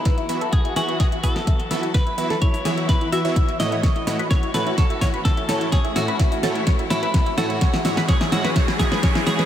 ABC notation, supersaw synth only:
X:1
M:4/4
L:1/16
Q:1/4=127
K:E
V:1 name="Supersaw synth"
z2 [E,B,EFe] z3 [E,B,EFe]4 [E,B,EFe] z3 [E,B,EFe] z | z2 [E,B,EFe] z3 [E,B,EFe]4 [E,B,EFe] [E,B,EFc] z2 [A,,A,EFc]2 | z2 [A,,A,EFc] z3 [A,,A,EFc]2 z2 [A,,A,EFc] z3 [A,,A,EFc]2 | z2 [A,,A,EFc] z3 [A,,A,EFc]2 z2 [A,,A,EFc] z3 [A,,A,EFc]2 |
z2 [G,,G,EFc] z3 [G,,G,EFc] z3 [G,,G,EFc] z3 [G,,G,EFc] z |]